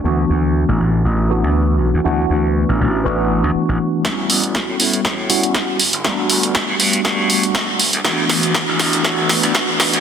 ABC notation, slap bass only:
X:1
M:4/4
L:1/16
Q:"Swing 16ths" 1/4=120
K:D
V:1 name="Slap bass" clef=bass
D,,2 D,,3 A,,, A,,,2 A,,,3 D,,3 B,,, D,, | D,,2 D,,3 A,,, A,,,2 A,,,3 D,, z A,,, z2 | A,,,2 A,,,3 A,, A,,2 A,,3 A,,,3 G,,, G,,, | z2 G,,,3 G,, G,,2 G,,3 G,,,3 D,, D,, |
D,,2 D,,3 A,,, A,,,2 A,,,3 D,,3 B,,, D,, |]